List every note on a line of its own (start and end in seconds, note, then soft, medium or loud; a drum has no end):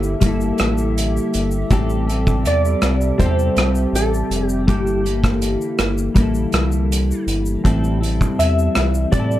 0.00 0.15 G1 medium
0.00 1.68 D3 medium
0.00 0.23 A#3 soft
0.00 1.68 A#3 medium
0.00 0.26 E4 soft
0.00 1.31 E4 medium
0.00 9.39 G4 medium
0.00 0.23 A4 soft
0.00 4.64 A4 medium
0.00 4.64 E5 medium
0.00 shaker medium
0.20 0.52 G1 loud
0.20 1.71 G3 medium
0.20 1.71 A#3 medium
0.20 kick medium
0.20 closed hi-hat medium
0.20 shaker medium
0.26 1.72 E4 medium
0.26 1.72 A4 medium
0.41 shaker soft
0.58 1.19 A1 loud
0.58 cross-stick medium
0.58 closed hi-hat soft
0.58 shaker soft
0.78 shaker soft
0.98 closed hi-hat medium
0.98 shaker medium
1.17 shaker soft
1.34 1.64 G1 medium
1.34 closed hi-hat medium
1.34 shaker medium
1.51 shaker medium
1.70 2.47 A1 loud
1.70 2.08 A2 medium
1.70 4.65 C3 medium
1.70 2.09 E3 medium
1.70 4.64 G3 medium
1.70 2.09 G3 medium
1.70 2.09 C4 medium
1.70 2.08 G4 medium
1.70 2.06 A4 medium
1.70 kick loud
1.70 closed hi-hat medium
1.70 shaker medium
1.90 shaker soft
2.07 3.18 G3 medium
2.07 3.20 C4 soft
2.07 3.23 G4 soft
2.07 3.21 A4 medium
2.07 closed hi-hat soft
2.07 shaker soft
2.27 kick medium
2.27 shaker medium
2.45 2.75 E2 medium
2.45 3.23 D5 medium
2.45 closed hi-hat medium
2.45 shaker medium
2.65 shaker medium
2.82 3.12 C2 medium
2.82 cross-stick medium
2.82 closed hi-hat soft
2.82 shaker soft
3.01 shaker medium
3.18 3.49 E2 loud
3.18 4.67 G3 medium
3.18 4.69 C4 medium
3.18 3.96 C5 loud
3.18 kick medium
3.18 closed hi-hat medium
3.18 shaker medium
3.23 4.70 G4 medium
3.23 4.70 A4 medium
3.39 shaker soft
3.57 3.86 C2 medium
3.57 cross-stick medium
3.57 closed hi-hat soft
3.57 shaker soft
3.75 shaker soft
3.93 4.23 A1 loud
3.93 4.47 A4 medium
3.93 closed hi-hat medium
3.93 shaker medium
4.14 shaker soft
4.30 4.69 F1 medium
4.30 closed hi-hat medium
4.30 shaker soft
4.47 4.65 G4 medium
4.47 shaker medium
4.66 5.57 G1 loud
4.66 7.61 D3 medium
4.66 9.39 E3 medium
4.66 5.05 G3 medium
4.66 7.61 A#3 medium
4.66 5.06 A#3 medium
4.66 9.39 E4 medium
4.66 5.05 E4 medium
4.66 7.24 G4 medium
4.66 kick loud
4.66 closed hi-hat medium
4.66 shaker medium
4.70 5.03 A4 medium
4.87 shaker soft
5.04 6.16 A#3 soft
5.04 6.20 E4 soft
5.04 6.18 A4 soft
5.04 closed hi-hat soft
5.04 shaker soft
5.24 kick medium
5.24 cross-stick medium
5.24 shaker medium
5.42 closed hi-hat medium
5.42 shaker medium
5.61 shaker medium
5.79 6.09 G1 medium
5.79 cross-stick medium
5.79 closed hi-hat soft
5.79 shaker soft
5.98 shaker medium
6.15 6.46 A1 loud
6.15 7.64 G3 medium
6.15 7.64 A#3 medium
6.15 kick medium
6.15 closed hi-hat medium
6.15 shaker medium
6.20 7.65 E4 medium
6.20 7.66 A4 medium
6.34 shaker soft
6.52 7.13 C2 medium
6.52 cross-stick medium
6.52 closed hi-hat medium
6.52 shaker soft
6.72 shaker soft
6.92 closed hi-hat medium
6.92 shaker medium
7.11 shaker soft
7.27 7.57 G1 medium
7.27 closed hi-hat medium
7.27 shaker soft
7.46 shaker medium
7.63 8.24 A1 loud
7.63 8.01 A2 medium
7.63 9.39 C3 medium
7.63 8.02 E3 medium
7.63 9.39 G3 medium
7.63 8.02 G3 medium
7.63 8.02 C4 medium
7.63 8.01 E4 medium
7.63 kick loud
7.63 closed hi-hat medium
7.63 shaker medium
7.67 7.99 A4 loud
7.84 shaker soft
8.01 9.11 G3 soft
8.01 9.13 C4 soft
8.01 9.17 E4 soft
8.01 9.15 A4 medium
8.01 closed hi-hat soft
8.01 shaker soft
8.21 kick medium
8.21 shaker medium
8.39 8.69 E2 medium
8.39 9.16 E5 medium
8.39 closed hi-hat medium
8.39 shaker medium
8.59 shaker medium
8.75 9.06 C2 medium
8.75 cross-stick medium
8.75 closed hi-hat soft
8.75 shaker soft
8.94 shaker medium
9.12 9.39 A2 loud
9.12 9.39 G3 medium
9.12 9.39 C4 medium
9.12 9.39 D5 medium
9.12 kick medium
9.12 closed hi-hat medium
9.12 shaker medium
9.18 9.39 E4 medium
9.18 9.39 A4 medium
9.31 shaker soft